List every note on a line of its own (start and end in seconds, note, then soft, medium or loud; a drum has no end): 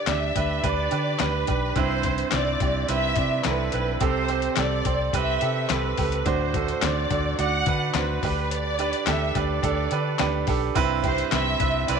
0.00 1.78 D3 medium
0.00 0.07 D4 medium
0.00 0.08 G4 medium
0.00 0.37 B4 medium
0.00 0.08 D5 medium
0.07 0.30 D2 medium
0.07 0.30 D4 medium
0.07 0.30 G4 medium
0.07 0.31 D5 medium
0.07 0.64 E5 medium
0.07 snare loud
0.07 clap medium
0.07 closed hi-hat medium
0.35 0.59 D2 medium
0.35 0.58 D4 medium
0.35 0.59 G4 medium
0.35 0.59 B4 medium
0.35 kick medium
0.35 closed hi-hat medium
0.63 0.87 D2 medium
0.63 0.86 D4 medium
0.63 0.86 G4 medium
0.63 0.87 B4 medium
0.63 1.21 D5 medium
0.63 kick medium
0.63 closed hi-hat medium
0.91 1.15 D3 medium
0.91 1.14 D4 medium
0.91 1.14 G4 medium
0.91 1.15 B4 medium
0.91 closed hi-hat medium
1.19 1.43 D2 medium
1.19 1.42 D4 medium
1.19 1.43 G4 medium
1.19 1.43 B4 medium
1.19 1.77 B4 medium
1.19 snare loud
1.19 clap medium
1.19 closed hi-hat medium
1.47 1.71 B1 medium
1.47 1.70 D4 medium
1.47 1.71 G4 medium
1.47 1.71 B4 medium
1.47 kick medium
1.47 closed hi-hat medium
1.76 2.22 C2 medium
1.76 2.57 G2 medium
1.76 1.99 C4 loud
1.76 1.99 E4 medium
1.76 1.99 B4 medium
1.76 2.29 C5 medium
1.76 kick medium
1.76 closed hi-hat medium
2.03 2.27 C4 medium
2.03 2.27 E4 medium
2.03 2.28 C5 medium
2.03 kick medium
2.03 closed hi-hat medium
2.18 closed hi-hat soft
2.31 2.56 C2 medium
2.31 2.55 C4 medium
2.31 2.55 E4 medium
2.31 2.56 C5 medium
2.31 2.90 D5 medium
2.31 snare loud
2.31 clap medium
2.31 closed hi-hat medium
2.60 2.84 C2 medium
2.60 2.83 C4 medium
2.60 2.84 E4 medium
2.60 2.84 G4 medium
2.60 kick medium
2.60 closed hi-hat medium
2.88 3.12 C2 medium
2.88 3.11 C4 medium
2.88 3.12 E4 medium
2.88 3.12 B4 medium
2.88 3.42 E5 loud
2.88 closed hi-hat medium
3.16 3.40 C3 medium
3.16 3.39 C4 medium
3.16 3.40 E4 medium
3.16 3.40 D5 medium
3.16 kick medium
3.16 closed hi-hat medium
3.44 3.69 C2 medium
3.44 3.68 C4 medium
3.44 3.68 E4 medium
3.44 3.68 A4 medium
3.44 4.02 B4 medium
3.44 snare medium
3.44 clap medium
3.44 closed hi-hat medium
3.72 3.97 B1 medium
3.72 3.96 C4 medium
3.72 3.96 E4 medium
3.72 3.96 B4 medium
3.72 closed hi-hat medium
4.01 4.47 C2 medium
4.01 4.82 C3 medium
4.01 4.24 C4 medium
4.01 4.24 G4 medium
4.01 4.24 A4 loud
4.01 4.54 C5 medium
4.01 kick loud
4.01 closed hi-hat medium
4.28 4.52 C4 medium
4.28 4.52 G4 medium
4.28 4.52 C5 medium
4.28 closed hi-hat medium
4.42 closed hi-hat medium
4.56 4.81 C2 loud
4.56 4.80 C4 medium
4.56 4.80 G4 medium
4.56 4.80 A4 medium
4.56 5.14 D5 medium
4.56 snare loud
4.56 clap medium
4.56 closed hi-hat medium
4.85 5.09 C2 medium
4.85 5.08 C4 medium
4.85 5.09 G4 medium
4.85 5.09 C5 medium
4.85 kick medium
4.85 closed hi-hat medium
5.13 5.37 C2 medium
5.13 5.36 C4 medium
5.13 5.37 G4 medium
5.13 5.37 B4 medium
5.13 5.67 E5 medium
5.13 kick medium
5.13 closed hi-hat medium
5.41 5.65 C3 medium
5.41 5.64 C4 medium
5.41 5.65 G4 medium
5.41 5.65 A4 medium
5.41 closed hi-hat medium
5.69 5.93 C2 medium
5.69 5.92 C4 medium
5.69 5.93 G4 medium
5.69 5.93 A4 medium
5.69 6.26 B4 medium
5.69 snare loud
5.69 clap medium
5.69 closed hi-hat medium
5.97 6.21 C#2 medium
5.97 6.21 C4 medium
5.97 6.21 G4 medium
5.97 6.21 A4 medium
5.97 kick medium
5.97 open hi-hat medium
6.12 closed hi-hat medium
6.26 6.72 D2 medium
6.26 7.07 A2 medium
6.26 6.49 D4 medium
6.26 6.49 F#4 medium
6.26 6.49 C5 loud
6.26 6.83 C5 medium
6.26 kick medium
6.26 closed hi-hat medium
6.54 6.77 D4 medium
6.54 6.77 F#4 medium
6.54 6.78 A4 medium
6.54 kick medium
6.54 closed hi-hat medium
6.68 closed hi-hat medium
6.82 7.06 D2 medium
6.82 7.05 D4 medium
6.82 7.05 F#4 medium
6.82 7.06 C5 medium
6.82 7.39 D5 medium
6.82 snare loud
6.82 clap medium
6.82 closed hi-hat medium
7.10 7.34 D2 medium
7.10 7.33 D4 medium
7.10 7.33 F#4 medium
7.10 7.34 A4 medium
7.10 kick medium
7.10 closed hi-hat medium
7.38 7.62 D2 medium
7.38 7.61 D4 medium
7.38 7.61 F#4 medium
7.38 7.62 D5 medium
7.38 7.91 F#5 medium
7.38 closed hi-hat medium
7.66 7.90 D3 medium
7.66 7.90 D4 medium
7.66 7.90 F#4 medium
7.66 7.90 B4 medium
7.66 kick loud
7.66 closed hi-hat medium
7.94 8.18 D2 loud
7.94 8.17 D4 medium
7.94 8.18 F#4 medium
7.94 8.51 B4 medium
7.94 8.18 C5 medium
7.94 snare loud
7.94 clap medium
7.94 closed hi-hat medium
8.23 8.92 D2 medium
8.23 9.04 D3 medium
8.23 8.69 D4 medium
8.23 8.69 G4 medium
8.23 8.69 B4 medium
8.23 kick medium
8.23 open hi-hat medium
8.51 9.08 D5 medium
8.51 closed hi-hat medium
8.79 9.02 D4 medium
8.79 9.02 G4 medium
8.79 9.02 B4 medium
8.79 closed hi-hat medium
8.93 closed hi-hat medium
9.06 9.30 D2 medium
9.06 9.30 D4 medium
9.06 9.30 G4 medium
9.06 9.30 A4 medium
9.06 9.36 E5 medium
9.06 snare loud
9.06 clap medium
9.06 closed hi-hat medium
9.35 9.59 D2 medium
9.35 9.58 D4 medium
9.35 9.58 G4 medium
9.35 9.59 B4 medium
9.35 10.48 D5 medium
9.35 kick medium
9.35 closed hi-hat medium
9.63 9.86 D2 loud
9.63 9.86 D4 medium
9.63 9.86 G4 medium
9.63 9.87 A4 loud
9.63 kick medium
9.63 closed hi-hat loud
9.91 10.15 D3 loud
9.91 10.14 D4 medium
9.91 10.14 G4 medium
9.91 10.15 B4 medium
9.91 closed hi-hat medium
10.19 10.43 D2 loud
10.19 10.42 D4 medium
10.19 10.42 G4 medium
10.19 10.43 B4 medium
10.19 snare loud
10.19 clap medium
10.19 closed hi-hat medium
10.47 10.71 B1 medium
10.47 10.70 D4 medium
10.47 10.70 G4 medium
10.47 10.71 A4 medium
10.47 kick medium
10.47 open hi-hat medium
10.75 11.22 C2 medium
10.75 11.56 G2 medium
10.75 10.98 C4 loud
10.75 10.99 E4 loud
10.75 10.99 B4 loud
10.75 kick medium
10.75 closed hi-hat medium
11.03 11.26 C4 medium
11.03 11.27 E4 medium
11.03 11.27 G4 medium
11.03 11.31 C5 medium
11.03 kick loud
11.03 closed hi-hat medium
11.18 closed hi-hat medium
11.31 11.55 C2 medium
11.31 11.54 C4 medium
11.31 11.55 E4 medium
11.31 11.55 B4 medium
11.31 11.85 E5 medium
11.31 snare loud
11.31 clap medium
11.31 closed hi-hat medium
11.60 11.83 C2 loud
11.60 11.83 C4 medium
11.60 11.83 E4 medium
11.60 11.83 B4 medium
11.60 kick medium
11.60 closed hi-hat medium
11.88 11.99 C2 medium
11.88 11.99 C4 medium
11.88 11.99 E4 medium
11.88 11.99 B4 loud
11.88 11.99 D5 loud
11.88 closed hi-hat medium